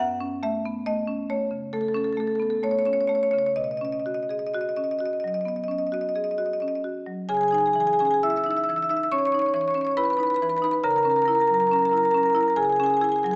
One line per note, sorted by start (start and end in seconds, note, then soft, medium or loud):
0.00 1.67 F#2 medium
0.00 0.42 F#5 loud
0.21 0.56 C#4 medium
0.43 0.78 A3 medium
0.43 0.85 E5 loud
0.65 0.87 B3 medium
0.86 1.21 A3 medium
0.86 1.28 D#5 loud
1.07 1.42 C#4 medium
1.30 1.64 A3 medium
1.30 1.71 C#5 medium
1.51 1.86 C#3 medium
1.73 2.08 A3 medium
1.73 1.81 A4 medium
1.81 1.88 A4 medium
1.88 1.97 A4 medium
1.94 2.30 C#4 medium
1.94 2.04 A4 medium
2.04 2.13 A4 medium
2.13 2.20 A4 medium
2.17 2.53 A3 medium
2.17 2.27 A4 medium
2.27 2.35 A4 medium
2.35 2.42 A4 medium
2.40 2.62 B3 medium
2.40 2.50 A4 medium
2.50 2.59 A4 medium
2.63 3.00 A3 medium
2.63 2.71 C#5 medium
2.71 2.79 C#5 medium
2.79 2.85 C#5 medium
2.85 3.24 C#4 medium
2.85 2.93 C#5 medium
2.93 3.01 C#5 medium
3.01 3.07 C#5 medium
3.07 3.48 A3 medium
3.07 3.15 C#5 medium
3.15 3.23 C#5 medium
3.23 3.31 C#5 medium
3.31 3.57 C#3 medium
3.31 3.39 C#5 medium
3.39 3.46 C#5 medium
3.46 3.54 C#5 medium
3.56 5.43 B2 medium
3.56 3.64 D#5 medium
3.64 3.71 D#5 medium
3.71 3.77 D#5 medium
3.77 3.85 D#5 medium
3.81 4.20 C#4 medium
3.81 3.92 D#5 medium
3.92 3.99 D#5 medium
3.99 4.07 D#5 medium
4.06 4.44 F#4 medium
4.06 4.14 D#5 medium
4.14 4.23 D#5 medium
4.23 4.31 D#5 medium
4.29 4.54 G#4 soft
4.29 4.39 D#5 medium
4.39 4.47 D#5 medium
4.47 4.54 D#5 medium
4.54 4.92 F#4 medium
4.54 4.61 D#5 medium
4.61 4.69 D#5 medium
4.69 4.76 D#5 medium
4.76 5.15 C#4 soft
4.76 4.84 D#5 medium
4.84 4.91 D#5 medium
4.91 4.99 D#5 medium
4.99 5.38 F#4 medium
4.99 5.06 D#5 medium
5.06 5.13 D#5 medium
5.13 5.20 D#5 medium
5.20 5.28 D#5 medium
5.24 5.61 F#3 soft
5.24 5.34 D#5 medium
5.34 5.41 D#5 medium
5.41 5.48 D#5 medium
5.45 5.83 B3 medium
5.45 5.56 D#5 medium
5.56 5.64 D#5 medium
5.64 5.71 D#5 medium
5.68 6.06 C#4 medium
5.68 5.79 D#5 medium
5.79 5.87 D#5 medium
5.87 5.94 D#5 medium
5.92 6.29 F#4 medium
5.92 6.01 D#5 medium
6.01 6.09 D#5 medium
6.09 6.16 D#5 medium
6.15 6.39 G#4 soft
6.15 6.24 D#5 medium
6.24 6.31 D#5 medium
6.31 6.38 D#5 medium
6.38 6.76 F#4 medium
6.38 6.46 D#5 medium
6.46 6.53 D#5 medium
6.53 6.60 D#5 medium
6.60 7.00 C#4 medium
6.60 6.68 D#5 medium
6.68 6.75 D#5 medium
6.75 6.81 D#5 medium
6.84 7.22 F#4 medium
7.06 7.30 F#3 medium
7.29 9.07 C#3 medium
7.29 7.37 G#4 medium
7.29 7.35 G#5 medium
7.35 7.43 G#4 medium
7.35 7.41 G#5 medium
7.41 7.51 G#4 medium
7.41 7.48 G#5 medium
7.48 7.58 G#4 medium
7.48 7.54 G#5 medium
7.52 7.91 D#4 medium
7.52 7.60 G#5 medium
7.58 7.66 G#4 medium
7.58 7.67 G#5 medium
7.66 7.73 G#4 medium
7.66 7.73 G#5 medium
7.73 8.14 E3 medium
7.73 7.80 G#4 medium
7.73 7.80 G#5 medium
7.80 7.87 G#4 medium
7.80 7.87 G#5 medium
7.87 7.94 G#4 medium
7.87 7.93 G#5 medium
7.93 8.00 G#4 medium
7.93 7.99 G#5 medium
7.99 8.37 C#4 medium
7.99 8.07 G#4 medium
7.99 8.05 G#5 medium
8.05 8.14 G#4 medium
8.05 8.11 G#5 medium
8.11 8.19 G#4 medium
8.11 8.19 G#5 medium
8.23 8.60 E4 medium
8.23 8.30 E5 medium
8.23 8.30 E6 medium
8.30 8.36 E5 medium
8.30 8.37 E6 medium
8.36 8.44 E5 medium
8.36 8.44 E6 medium
8.44 8.81 D#4 medium
8.44 8.51 E5 medium
8.44 8.51 E6 medium
8.51 8.57 E5 medium
8.51 8.57 E6 medium
8.57 8.64 E5 medium
8.57 8.64 E6 medium
8.64 8.71 E5 medium
8.64 8.70 E6 medium
8.69 9.03 E3 medium
8.69 8.78 E5 medium
8.69 8.76 E6 medium
8.76 8.84 E5 medium
8.76 8.82 E6 medium
8.82 8.91 E5 medium
8.82 8.89 E6 medium
8.89 9.24 D#4 medium
8.89 8.97 E5 medium
8.89 8.96 E6 medium
8.96 9.04 E5 medium
8.96 9.03 E6 medium
9.03 9.07 E5 medium
9.03 9.08 E6 medium
9.12 9.46 C#4 medium
9.12 9.19 C#5 medium
9.12 9.18 C#6 medium
9.18 9.27 C#5 medium
9.18 9.25 C#6 medium
9.25 9.34 C#5 medium
9.25 9.32 C#6 medium
9.32 9.68 D#4 medium
9.32 9.42 C#5 medium
9.32 9.39 C#6 medium
9.39 9.49 C#5 medium
9.39 9.46 C#6 medium
9.46 9.56 C#5 medium
9.46 9.54 C#6 medium
9.54 9.89 E3 medium
9.54 9.64 C#5 medium
9.54 9.61 C#6 medium
9.61 9.70 C#5 medium
9.61 9.68 C#6 medium
9.68 9.78 C#5 medium
9.68 9.74 C#6 medium
9.74 10.10 C#4 medium
9.74 9.85 C#5 medium
9.74 9.81 C#6 medium
9.81 9.91 C#5 medium
9.81 9.87 C#6 medium
9.87 9.95 C#6 medium
9.91 9.94 C#5 medium
9.97 10.32 E4 medium
9.97 10.05 B4 medium
9.97 10.04 B5 loud
10.04 10.13 B4 medium
10.04 10.10 B5 medium
10.10 10.20 B4 medium
10.10 10.17 B5 medium
10.17 10.53 D#4 medium
10.17 10.27 B4 medium
10.17 10.23 B5 medium
10.23 10.34 B4 medium
10.23 10.30 B5 medium
10.30 10.36 B5 medium
10.34 10.42 B4 medium
10.34 10.43 B5 medium
10.42 10.76 E3 medium
10.42 10.50 B4 medium
10.42 10.49 B5 medium
10.49 10.58 B4 medium
10.49 10.57 B5 medium
10.57 10.65 B4 medium
10.57 10.64 B5 medium
10.62 10.84 D#4 medium
10.62 10.73 B4 medium
10.62 10.71 B5 medium
10.71 10.80 B4 medium
10.71 10.80 B5 medium
10.84 12.54 C#3 medium
10.84 10.92 A#4 medium
10.84 10.91 A#5 medium
10.91 10.98 A#4 medium
10.91 10.96 A#5 medium
10.96 11.05 A#4 medium
10.96 11.03 A#5 medium
11.03 11.40 C#4 medium
11.03 11.11 A#4 medium
11.03 11.10 A#5 medium
11.10 11.19 A#4 medium
11.10 11.16 A#5 medium
11.16 11.25 A#4 medium
11.16 11.22 A#5 medium
11.22 11.33 A#4 medium
11.22 11.29 A#5 medium
11.28 11.62 E4 medium
11.28 11.35 A#5 medium
11.33 11.40 A#4 medium
11.33 11.41 A#5 medium
11.40 11.47 A#4 medium
11.40 11.48 A#5 medium
11.47 11.84 F#3 medium
11.47 11.54 A#4 medium
11.47 11.54 A#5 medium
11.54 11.61 A#4 medium
11.54 11.60 A#5 medium
11.60 11.69 A#4 medium
11.60 11.67 A#5 medium
11.67 11.76 A#4 medium
11.67 11.73 A#5 medium
11.71 12.06 C#4 medium
11.71 11.79 A#5 medium
11.76 11.82 A#4 medium
11.76 11.85 A#5 medium
11.82 11.89 A#4 medium
11.82 11.91 A#5 medium
11.89 12.28 E4 medium
11.89 11.97 A#4 medium
11.89 11.98 A#5 medium
11.97 12.03 A#4 medium
11.97 12.05 A#5 medium
12.03 12.10 A#4 medium
12.03 12.11 A#5 medium
12.10 12.18 A#4 medium
12.10 12.17 A#5 medium
12.14 12.49 C#4 medium
12.14 12.26 A#4 medium
12.14 12.23 A#5 medium
12.23 12.33 A#4 medium
12.23 12.30 A#5 medium
12.30 12.41 A#4 medium
12.30 12.36 A#5 medium
12.35 12.70 E4 medium
12.35 12.43 A#5 medium
12.41 12.48 A#4 medium
12.41 12.50 A#5 medium
12.48 12.54 A#4 medium
12.48 12.54 A#5 medium
12.56 13.36 C#3 medium
12.56 12.65 G#4 medium
12.56 12.63 G#5 medium
12.63 12.72 G#4 medium
12.63 12.70 G#5 medium
12.70 12.80 G#4 medium
12.70 12.76 G#5 medium
12.76 13.14 C#4 medium
12.76 12.86 G#4 medium
12.76 12.84 G#5 medium
12.84 12.94 G#4 medium
12.84 12.90 G#5 medium
12.90 13.01 G#4 medium
12.90 12.97 G#5 medium
12.97 13.04 G#5 medium
13.01 13.35 E4 medium
13.01 13.09 G#4 medium
13.01 13.12 G#5 medium
13.09 13.16 G#4 medium
13.09 13.19 G#5 medium
13.16 13.23 G#4 medium
13.16 13.26 G#5 medium
13.23 13.36 F#3 medium
13.23 13.31 G#4 medium
13.23 13.36 G#5 medium
13.31 13.36 G#4 medium